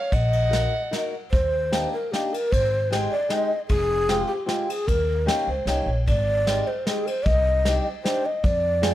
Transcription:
Already playing: C#5 F5
0.12 A#1 D#5 F#5, kick, ride
0.33 ride
0.50 A#3 D#4 F#4 A#4, snare, ride
0.91 A#3 D#4 F#4 A#4, snare, ride
1.31 D#2 C5, kick, ride
1.71 A#3 D4 D#4 G4, snare, ride
1.93 A#4
2.11 A#3 D4 D#4 G4, snare, ride
2.33 A#4, ride
2.52 G#1 C5, kick, ride
2.90 G#3 C4 D#4 G4, snare, ride
3.11 D5
3.29 G#3 C4 D#4 G4 D#5, snare, ride
3.68 F1 G#4, kick, ride
4.09 G#3 C4 F4 G4, snare, ride
4.27 G4
4.46 G#3 C4 F4 G4, snare, ride
4.69 G#4, ride
4.87 D#2 A#4, kick, ride
5.26 A#3 C#4 D#4 G4, snare, ride
5.47 C#2 C5
5.65 C2 A#3 C#4 D#4 G4 C#5, snare, ride
5.86 A#1
6.07 G#1 D5, kick, ride
6.46 G#3 C4 D#4 G4, snare, ride
6.67 C5
6.86 G#3 C4 D#4 G4 G#4, snare, ride
7.07 C5, ride
7.25 C2 D#5, kick, ride
7.65 C4 D4 D#4 G4, snare, ride
8.03 C4 D4 D#4 G4 C5, snare, ride
8.26 D#5
8.44 F2 D5, kick, ride
8.82 G#3 C4 F4 G#4, snare, ride

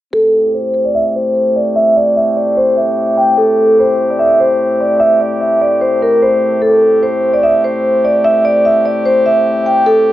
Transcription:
0.13 A2 A3 C4 G4 A4
0.54 C5
0.85 D5
0.95 E5
1.16 C5
1.56 D5
1.76 E5
1.96 D5
2.16 E5
2.37 D5
2.57 C5
2.77 E5
3.18 G5
3.38 A3 A4
3.79 C5
4.10 D5
4.19 E5
4.40 C5
4.81 D5
5.00 E5
5.20 D5
5.41 E5
5.61 D5
5.81 C5
6.02 A#4
6.22 C5
6.62 C4 G4 A4
7.03 C5
7.33 D5
7.43 E5
7.64 C5
8.05 D5
8.24 E5
8.45 D5
8.65 E5
8.85 D5
9.05 C5
9.26 E5
9.66 G5
9.86 A2 A4

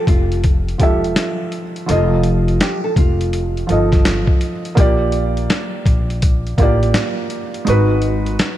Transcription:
Already playing: F3 F4 A4 E5
0.07 F1 F4, kick, closed hi-hat
0.32 closed hi-hat
0.44 kick, closed hi-hat
0.69 closed hi-hat
0.78 E1 F3 F4 G4 A4, kick, closed hi-hat
0.83 E5
1.04 closed hi-hat
1.16 snare, closed hi-hat
1.52 closed hi-hat
1.76 closed hi-hat
1.86 F1 F3 F4 A4, closed hi-hat
1.91 D#5
2.23 closed hi-hat
2.48 closed hi-hat
2.60 G4, snare, closed hi-hat
2.84 A4
2.96 F1 F4, kick, closed hi-hat
3.21 closed hi-hat
3.33 closed hi-hat
3.57 closed hi-hat
3.67 G1 F3 F4 A4, closed hi-hat
3.72 D#5
3.92 kick, snare, closed hi-hat
4.05 snare, closed hi-hat
4.27 kick
4.41 closed hi-hat
4.65 closed hi-hat
4.75 A#1 A#3 F4 G4, kick, closed hi-hat
4.80 D5
5.12 closed hi-hat
5.37 closed hi-hat
5.50 snare, closed hi-hat
5.86 A#1, kick, closed hi-hat
6.10 closed hi-hat
6.22 kick, closed hi-hat
6.47 closed hi-hat
6.58 A1 A#3 F4 G4, kick, closed hi-hat
6.63 D5
6.83 closed hi-hat
6.94 snare, closed hi-hat
7.30 closed hi-hat
7.54 closed hi-hat
7.65 G#1 G#3 D#4 F#4, closed hi-hat
7.70 B4
8.02 closed hi-hat
8.26 closed hi-hat
8.39 snare, closed hi-hat

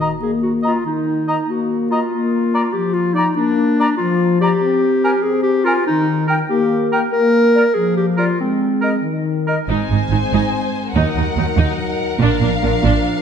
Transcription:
Already playing: D#3 F#4
0.00 D#5 A#5
0.21 A#3 G#4
0.43 F#4
0.63 F4 D#5 A#5
0.85 D#3 D#4
1.28 D#5 A#5
1.48 A#3 F#4
1.90 F4 D#5 A#5
2.12 A#3
2.54 D5 A#5
2.73 F3 G4
2.94 F4
3.14 D#4 D5 A#5
3.36 A#3 D4
3.80 D5 A#5
3.98 F3 F4
4.41 G4 D5 A#5
4.62 C4
5.04 A#4 G#5
5.23 C4 G#4
5.43 G4
5.65 F4 A#4 G#5
5.87 D#3 D#4
6.27 A#4 G5
6.49 A#3 G4
6.92 A#4 G5
7.10 A#3 A#4
7.55 A#4 D5
7.74 F3 G#4
7.97 G4
8.17 F4 A#4 D5
8.40 G#3 C4
8.81 A#4 D#5
9.02 D#3
9.47 A#4 D#5
9.68 G#1 G#2 G#3 C4 D#4 C5 G#5
9.90 G#1 G#2 D#4
10.10 G#1 G#2 D#4
10.32 G#1 G#2 D#4
10.95 D#2 F#3 D#4 A#4 F#5
11.16 D#2 D#4
11.37 D#2 D#4
11.57 D#2 D#4
12.19 A#1 A#2 F3 D4 F5
12.40 A#1 A#2 D4
12.61 A#1 A#2 D4
12.82 A#1 A#2 D4

